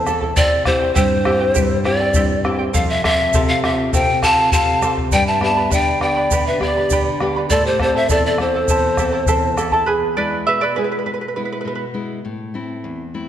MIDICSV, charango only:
0, 0, Header, 1, 2, 480
1, 0, Start_track
1, 0, Key_signature, 0, "minor"
1, 0, Tempo, 594059
1, 296, Time_signature, 2, 2, 24, 8
1, 10734, End_track
2, 0, Start_track
2, 0, Title_t, "Charango"
2, 0, Program_c, 0, 24
2, 48, Note_on_c, 0, 76, 60
2, 53, Note_on_c, 0, 64, 64
2, 56, Note_on_c, 0, 69, 63
2, 59, Note_on_c, 0, 81, 66
2, 161, Note_off_c, 0, 81, 0
2, 169, Note_off_c, 0, 69, 0
2, 170, Note_on_c, 0, 81, 58
2, 172, Note_off_c, 0, 76, 0
2, 175, Note_off_c, 0, 64, 0
2, 178, Note_on_c, 0, 69, 46
2, 188, Note_on_c, 0, 64, 49
2, 288, Note_off_c, 0, 64, 0
2, 293, Note_off_c, 0, 81, 0
2, 294, Note_on_c, 0, 67, 69
2, 295, Note_off_c, 0, 69, 0
2, 298, Note_on_c, 0, 64, 79
2, 298, Note_on_c, 0, 72, 90
2, 298, Note_on_c, 0, 76, 73
2, 301, Note_on_c, 0, 79, 80
2, 532, Note_off_c, 0, 76, 0
2, 535, Note_off_c, 0, 67, 0
2, 537, Note_off_c, 0, 64, 0
2, 537, Note_off_c, 0, 72, 0
2, 538, Note_off_c, 0, 79, 0
2, 541, Note_on_c, 0, 76, 65
2, 547, Note_on_c, 0, 64, 57
2, 553, Note_on_c, 0, 72, 63
2, 554, Note_on_c, 0, 79, 68
2, 647, Note_off_c, 0, 79, 0
2, 655, Note_off_c, 0, 72, 0
2, 657, Note_on_c, 0, 79, 53
2, 659, Note_off_c, 0, 76, 0
2, 661, Note_off_c, 0, 64, 0
2, 664, Note_on_c, 0, 72, 47
2, 670, Note_on_c, 0, 64, 41
2, 766, Note_off_c, 0, 64, 0
2, 768, Note_off_c, 0, 79, 0
2, 770, Note_off_c, 0, 72, 0
2, 771, Note_on_c, 0, 67, 79
2, 771, Note_on_c, 0, 76, 76
2, 775, Note_on_c, 0, 64, 76
2, 778, Note_on_c, 0, 79, 84
2, 779, Note_on_c, 0, 72, 72
2, 1006, Note_off_c, 0, 76, 0
2, 1007, Note_off_c, 0, 64, 0
2, 1011, Note_off_c, 0, 72, 0
2, 1014, Note_off_c, 0, 67, 0
2, 1015, Note_on_c, 0, 76, 55
2, 1016, Note_on_c, 0, 64, 59
2, 1017, Note_off_c, 0, 79, 0
2, 1021, Note_on_c, 0, 72, 59
2, 1026, Note_on_c, 0, 79, 61
2, 1125, Note_off_c, 0, 79, 0
2, 1129, Note_off_c, 0, 72, 0
2, 1132, Note_off_c, 0, 64, 0
2, 1135, Note_on_c, 0, 79, 50
2, 1136, Note_off_c, 0, 76, 0
2, 1139, Note_on_c, 0, 72, 46
2, 1142, Note_on_c, 0, 64, 43
2, 1244, Note_off_c, 0, 64, 0
2, 1249, Note_off_c, 0, 79, 0
2, 1249, Note_on_c, 0, 67, 79
2, 1250, Note_off_c, 0, 72, 0
2, 1253, Note_on_c, 0, 76, 75
2, 1254, Note_on_c, 0, 64, 74
2, 1259, Note_on_c, 0, 72, 72
2, 1259, Note_on_c, 0, 79, 82
2, 1480, Note_off_c, 0, 76, 0
2, 1486, Note_off_c, 0, 64, 0
2, 1489, Note_off_c, 0, 72, 0
2, 1490, Note_on_c, 0, 76, 68
2, 1493, Note_off_c, 0, 67, 0
2, 1493, Note_off_c, 0, 79, 0
2, 1496, Note_on_c, 0, 64, 58
2, 1499, Note_on_c, 0, 72, 68
2, 1503, Note_on_c, 0, 79, 77
2, 1608, Note_off_c, 0, 79, 0
2, 1612, Note_off_c, 0, 72, 0
2, 1613, Note_off_c, 0, 76, 0
2, 1616, Note_off_c, 0, 64, 0
2, 1617, Note_on_c, 0, 79, 53
2, 1621, Note_on_c, 0, 72, 50
2, 1627, Note_on_c, 0, 64, 44
2, 1735, Note_off_c, 0, 64, 0
2, 1737, Note_off_c, 0, 79, 0
2, 1739, Note_off_c, 0, 72, 0
2, 1740, Note_on_c, 0, 67, 78
2, 1742, Note_on_c, 0, 76, 81
2, 1745, Note_on_c, 0, 64, 76
2, 1748, Note_on_c, 0, 72, 79
2, 1749, Note_on_c, 0, 79, 76
2, 1961, Note_off_c, 0, 76, 0
2, 1966, Note_off_c, 0, 64, 0
2, 1969, Note_off_c, 0, 72, 0
2, 1971, Note_on_c, 0, 76, 56
2, 1975, Note_off_c, 0, 79, 0
2, 1975, Note_on_c, 0, 64, 61
2, 1978, Note_off_c, 0, 67, 0
2, 1978, Note_on_c, 0, 72, 66
2, 1985, Note_on_c, 0, 79, 66
2, 2081, Note_off_c, 0, 79, 0
2, 2087, Note_off_c, 0, 72, 0
2, 2091, Note_on_c, 0, 79, 55
2, 2094, Note_off_c, 0, 76, 0
2, 2096, Note_off_c, 0, 64, 0
2, 2096, Note_on_c, 0, 72, 52
2, 2104, Note_on_c, 0, 64, 42
2, 2205, Note_off_c, 0, 72, 0
2, 2206, Note_off_c, 0, 64, 0
2, 2210, Note_on_c, 0, 69, 76
2, 2213, Note_off_c, 0, 79, 0
2, 2214, Note_on_c, 0, 72, 79
2, 2219, Note_on_c, 0, 77, 87
2, 2441, Note_off_c, 0, 69, 0
2, 2445, Note_off_c, 0, 72, 0
2, 2451, Note_on_c, 0, 69, 63
2, 2454, Note_on_c, 0, 72, 64
2, 2455, Note_off_c, 0, 77, 0
2, 2464, Note_on_c, 0, 77, 64
2, 2564, Note_off_c, 0, 77, 0
2, 2573, Note_off_c, 0, 72, 0
2, 2574, Note_off_c, 0, 69, 0
2, 2574, Note_on_c, 0, 77, 53
2, 2582, Note_on_c, 0, 72, 46
2, 2694, Note_off_c, 0, 72, 0
2, 2695, Note_off_c, 0, 77, 0
2, 2699, Note_on_c, 0, 69, 86
2, 2704, Note_on_c, 0, 72, 82
2, 2710, Note_on_c, 0, 77, 92
2, 2928, Note_off_c, 0, 69, 0
2, 2933, Note_off_c, 0, 72, 0
2, 2938, Note_on_c, 0, 69, 52
2, 2939, Note_off_c, 0, 77, 0
2, 2943, Note_on_c, 0, 72, 60
2, 2949, Note_on_c, 0, 77, 61
2, 3046, Note_off_c, 0, 77, 0
2, 3056, Note_off_c, 0, 72, 0
2, 3056, Note_on_c, 0, 77, 51
2, 3057, Note_off_c, 0, 69, 0
2, 3066, Note_on_c, 0, 72, 48
2, 3169, Note_off_c, 0, 72, 0
2, 3172, Note_off_c, 0, 77, 0
2, 3174, Note_on_c, 0, 69, 77
2, 3179, Note_on_c, 0, 72, 75
2, 3182, Note_on_c, 0, 77, 88
2, 3415, Note_off_c, 0, 69, 0
2, 3417, Note_off_c, 0, 72, 0
2, 3419, Note_off_c, 0, 77, 0
2, 3423, Note_on_c, 0, 69, 59
2, 3430, Note_on_c, 0, 72, 59
2, 3437, Note_on_c, 0, 77, 78
2, 3532, Note_off_c, 0, 77, 0
2, 3540, Note_off_c, 0, 69, 0
2, 3541, Note_off_c, 0, 72, 0
2, 3541, Note_on_c, 0, 77, 54
2, 3551, Note_on_c, 0, 72, 47
2, 3651, Note_off_c, 0, 72, 0
2, 3654, Note_off_c, 0, 77, 0
2, 3659, Note_on_c, 0, 69, 73
2, 3661, Note_on_c, 0, 72, 76
2, 3664, Note_on_c, 0, 77, 86
2, 3892, Note_off_c, 0, 69, 0
2, 3898, Note_off_c, 0, 72, 0
2, 3900, Note_off_c, 0, 77, 0
2, 3901, Note_on_c, 0, 69, 58
2, 3910, Note_on_c, 0, 72, 56
2, 3915, Note_on_c, 0, 77, 58
2, 4009, Note_off_c, 0, 77, 0
2, 4019, Note_off_c, 0, 69, 0
2, 4019, Note_off_c, 0, 72, 0
2, 4019, Note_on_c, 0, 77, 52
2, 4029, Note_on_c, 0, 72, 43
2, 4135, Note_off_c, 0, 72, 0
2, 4137, Note_off_c, 0, 77, 0
2, 4138, Note_on_c, 0, 67, 71
2, 4138, Note_on_c, 0, 71, 71
2, 4140, Note_on_c, 0, 79, 73
2, 4144, Note_on_c, 0, 74, 79
2, 4144, Note_on_c, 0, 83, 78
2, 4361, Note_off_c, 0, 79, 0
2, 4368, Note_off_c, 0, 71, 0
2, 4370, Note_on_c, 0, 79, 62
2, 4371, Note_off_c, 0, 74, 0
2, 4372, Note_off_c, 0, 83, 0
2, 4377, Note_off_c, 0, 67, 0
2, 4378, Note_on_c, 0, 71, 62
2, 4380, Note_on_c, 0, 74, 62
2, 4382, Note_on_c, 0, 83, 65
2, 4486, Note_off_c, 0, 83, 0
2, 4491, Note_off_c, 0, 74, 0
2, 4493, Note_off_c, 0, 79, 0
2, 4496, Note_on_c, 0, 83, 60
2, 4497, Note_off_c, 0, 71, 0
2, 4501, Note_on_c, 0, 74, 53
2, 4507, Note_on_c, 0, 71, 47
2, 4607, Note_off_c, 0, 71, 0
2, 4609, Note_off_c, 0, 74, 0
2, 4609, Note_off_c, 0, 83, 0
2, 4611, Note_on_c, 0, 67, 81
2, 4612, Note_on_c, 0, 79, 80
2, 4616, Note_on_c, 0, 71, 84
2, 4619, Note_on_c, 0, 74, 88
2, 4619, Note_on_c, 0, 83, 80
2, 4850, Note_off_c, 0, 79, 0
2, 4853, Note_off_c, 0, 67, 0
2, 4855, Note_off_c, 0, 74, 0
2, 4856, Note_off_c, 0, 71, 0
2, 4857, Note_off_c, 0, 83, 0
2, 4860, Note_on_c, 0, 79, 55
2, 4864, Note_on_c, 0, 71, 55
2, 4864, Note_on_c, 0, 74, 63
2, 4868, Note_on_c, 0, 83, 62
2, 4972, Note_off_c, 0, 83, 0
2, 4977, Note_off_c, 0, 79, 0
2, 4980, Note_off_c, 0, 71, 0
2, 4980, Note_off_c, 0, 74, 0
2, 4982, Note_on_c, 0, 83, 59
2, 4992, Note_on_c, 0, 74, 51
2, 4994, Note_on_c, 0, 71, 47
2, 5098, Note_off_c, 0, 83, 0
2, 5102, Note_off_c, 0, 71, 0
2, 5103, Note_off_c, 0, 74, 0
2, 5106, Note_on_c, 0, 67, 79
2, 5109, Note_on_c, 0, 79, 75
2, 5111, Note_on_c, 0, 71, 76
2, 5112, Note_on_c, 0, 74, 86
2, 5112, Note_on_c, 0, 83, 77
2, 5336, Note_off_c, 0, 79, 0
2, 5340, Note_off_c, 0, 67, 0
2, 5343, Note_off_c, 0, 71, 0
2, 5343, Note_off_c, 0, 74, 0
2, 5344, Note_off_c, 0, 83, 0
2, 5345, Note_on_c, 0, 79, 66
2, 5353, Note_on_c, 0, 71, 65
2, 5356, Note_on_c, 0, 74, 66
2, 5357, Note_on_c, 0, 83, 70
2, 5460, Note_off_c, 0, 79, 0
2, 5461, Note_off_c, 0, 83, 0
2, 5464, Note_off_c, 0, 71, 0
2, 5465, Note_off_c, 0, 74, 0
2, 5471, Note_on_c, 0, 83, 58
2, 5479, Note_on_c, 0, 74, 49
2, 5483, Note_on_c, 0, 71, 48
2, 5582, Note_off_c, 0, 83, 0
2, 5586, Note_off_c, 0, 71, 0
2, 5587, Note_off_c, 0, 74, 0
2, 5592, Note_on_c, 0, 67, 76
2, 5595, Note_on_c, 0, 79, 82
2, 5596, Note_on_c, 0, 71, 77
2, 5600, Note_on_c, 0, 74, 83
2, 5600, Note_on_c, 0, 83, 78
2, 5820, Note_off_c, 0, 79, 0
2, 5823, Note_off_c, 0, 67, 0
2, 5825, Note_off_c, 0, 71, 0
2, 5827, Note_off_c, 0, 74, 0
2, 5827, Note_off_c, 0, 83, 0
2, 5830, Note_on_c, 0, 79, 62
2, 5835, Note_on_c, 0, 71, 57
2, 5837, Note_on_c, 0, 74, 59
2, 5841, Note_on_c, 0, 83, 61
2, 5938, Note_off_c, 0, 83, 0
2, 5942, Note_off_c, 0, 79, 0
2, 5945, Note_off_c, 0, 71, 0
2, 5946, Note_off_c, 0, 74, 0
2, 5948, Note_on_c, 0, 83, 57
2, 5959, Note_on_c, 0, 74, 51
2, 5961, Note_on_c, 0, 71, 46
2, 6061, Note_off_c, 0, 83, 0
2, 6066, Note_off_c, 0, 74, 0
2, 6067, Note_on_c, 0, 72, 81
2, 6068, Note_off_c, 0, 71, 0
2, 6072, Note_on_c, 0, 76, 71
2, 6073, Note_on_c, 0, 64, 79
2, 6074, Note_on_c, 0, 69, 80
2, 6078, Note_on_c, 0, 81, 86
2, 6296, Note_off_c, 0, 76, 0
2, 6300, Note_off_c, 0, 64, 0
2, 6300, Note_off_c, 0, 72, 0
2, 6304, Note_off_c, 0, 69, 0
2, 6306, Note_off_c, 0, 81, 0
2, 6306, Note_on_c, 0, 76, 61
2, 6310, Note_on_c, 0, 64, 62
2, 6316, Note_on_c, 0, 69, 74
2, 6316, Note_on_c, 0, 81, 76
2, 6414, Note_off_c, 0, 81, 0
2, 6419, Note_off_c, 0, 69, 0
2, 6420, Note_off_c, 0, 76, 0
2, 6422, Note_off_c, 0, 64, 0
2, 6424, Note_on_c, 0, 81, 57
2, 6429, Note_on_c, 0, 69, 49
2, 6436, Note_on_c, 0, 64, 40
2, 6539, Note_off_c, 0, 81, 0
2, 6540, Note_off_c, 0, 64, 0
2, 6541, Note_off_c, 0, 69, 0
2, 6549, Note_on_c, 0, 72, 80
2, 6550, Note_on_c, 0, 64, 85
2, 6550, Note_on_c, 0, 76, 76
2, 6553, Note_on_c, 0, 81, 82
2, 6555, Note_on_c, 0, 69, 88
2, 6780, Note_off_c, 0, 76, 0
2, 6781, Note_off_c, 0, 72, 0
2, 6782, Note_off_c, 0, 64, 0
2, 6783, Note_off_c, 0, 81, 0
2, 6784, Note_off_c, 0, 69, 0
2, 6790, Note_on_c, 0, 76, 59
2, 6794, Note_on_c, 0, 64, 59
2, 6798, Note_on_c, 0, 69, 64
2, 6799, Note_on_c, 0, 81, 65
2, 6899, Note_off_c, 0, 81, 0
2, 6902, Note_off_c, 0, 76, 0
2, 6904, Note_off_c, 0, 64, 0
2, 6905, Note_off_c, 0, 69, 0
2, 6909, Note_on_c, 0, 81, 57
2, 6915, Note_on_c, 0, 69, 53
2, 6919, Note_on_c, 0, 64, 48
2, 7018, Note_off_c, 0, 64, 0
2, 7021, Note_off_c, 0, 69, 0
2, 7021, Note_off_c, 0, 81, 0
2, 7025, Note_on_c, 0, 72, 75
2, 7025, Note_on_c, 0, 76, 78
2, 7028, Note_on_c, 0, 64, 73
2, 7030, Note_on_c, 0, 69, 83
2, 7035, Note_on_c, 0, 81, 88
2, 7249, Note_off_c, 0, 76, 0
2, 7255, Note_off_c, 0, 64, 0
2, 7259, Note_off_c, 0, 69, 0
2, 7259, Note_off_c, 0, 72, 0
2, 7259, Note_off_c, 0, 81, 0
2, 7259, Note_on_c, 0, 76, 70
2, 7264, Note_on_c, 0, 64, 64
2, 7268, Note_on_c, 0, 69, 66
2, 7269, Note_on_c, 0, 81, 74
2, 7365, Note_off_c, 0, 81, 0
2, 7371, Note_off_c, 0, 69, 0
2, 7374, Note_off_c, 0, 64, 0
2, 7374, Note_on_c, 0, 81, 62
2, 7376, Note_off_c, 0, 76, 0
2, 7380, Note_on_c, 0, 69, 54
2, 7384, Note_on_c, 0, 64, 56
2, 7488, Note_off_c, 0, 64, 0
2, 7491, Note_off_c, 0, 69, 0
2, 7494, Note_off_c, 0, 81, 0
2, 7495, Note_on_c, 0, 72, 81
2, 7498, Note_on_c, 0, 64, 96
2, 7498, Note_on_c, 0, 76, 79
2, 7501, Note_on_c, 0, 69, 82
2, 7505, Note_on_c, 0, 81, 98
2, 7720, Note_off_c, 0, 76, 0
2, 7726, Note_off_c, 0, 64, 0
2, 7728, Note_off_c, 0, 69, 0
2, 7730, Note_on_c, 0, 76, 62
2, 7731, Note_off_c, 0, 81, 0
2, 7734, Note_off_c, 0, 72, 0
2, 7735, Note_on_c, 0, 64, 70
2, 7738, Note_on_c, 0, 69, 63
2, 7740, Note_on_c, 0, 81, 64
2, 7846, Note_off_c, 0, 81, 0
2, 7852, Note_off_c, 0, 76, 0
2, 7853, Note_off_c, 0, 69, 0
2, 7854, Note_off_c, 0, 64, 0
2, 7855, Note_on_c, 0, 81, 58
2, 7863, Note_on_c, 0, 69, 54
2, 7866, Note_on_c, 0, 64, 49
2, 7970, Note_on_c, 0, 71, 68
2, 7974, Note_off_c, 0, 81, 0
2, 7975, Note_off_c, 0, 64, 0
2, 7978, Note_off_c, 0, 69, 0
2, 7978, Note_on_c, 0, 68, 59
2, 8199, Note_off_c, 0, 68, 0
2, 8215, Note_off_c, 0, 71, 0
2, 8216, Note_on_c, 0, 74, 73
2, 8225, Note_on_c, 0, 71, 63
2, 8443, Note_off_c, 0, 71, 0
2, 8457, Note_on_c, 0, 76, 87
2, 8462, Note_off_c, 0, 74, 0
2, 8471, Note_on_c, 0, 71, 67
2, 8574, Note_off_c, 0, 71, 0
2, 8574, Note_on_c, 0, 74, 74
2, 8579, Note_off_c, 0, 76, 0
2, 8590, Note_on_c, 0, 71, 58
2, 8685, Note_off_c, 0, 71, 0
2, 8694, Note_on_c, 0, 71, 66
2, 8697, Note_off_c, 0, 74, 0
2, 8709, Note_on_c, 0, 68, 47
2, 8752, Note_off_c, 0, 71, 0
2, 8760, Note_off_c, 0, 68, 0
2, 8761, Note_on_c, 0, 71, 45
2, 8811, Note_off_c, 0, 71, 0
2, 8821, Note_on_c, 0, 71, 53
2, 8868, Note_off_c, 0, 71, 0
2, 8878, Note_on_c, 0, 71, 44
2, 8928, Note_off_c, 0, 71, 0
2, 8938, Note_on_c, 0, 71, 46
2, 8990, Note_off_c, 0, 71, 0
2, 9000, Note_on_c, 0, 71, 43
2, 9050, Note_off_c, 0, 71, 0
2, 9059, Note_on_c, 0, 71, 47
2, 9107, Note_off_c, 0, 71, 0
2, 9117, Note_on_c, 0, 71, 38
2, 9170, Note_off_c, 0, 71, 0
2, 9180, Note_on_c, 0, 71, 52
2, 9244, Note_off_c, 0, 71, 0
2, 9254, Note_on_c, 0, 71, 46
2, 9303, Note_off_c, 0, 71, 0
2, 9312, Note_on_c, 0, 71, 52
2, 9369, Note_off_c, 0, 71, 0
2, 9379, Note_on_c, 0, 71, 45
2, 9424, Note_off_c, 0, 71, 0
2, 9434, Note_on_c, 0, 71, 51
2, 9487, Note_off_c, 0, 71, 0
2, 9497, Note_on_c, 0, 71, 48
2, 9559, Note_off_c, 0, 71, 0
2, 10734, End_track
0, 0, End_of_file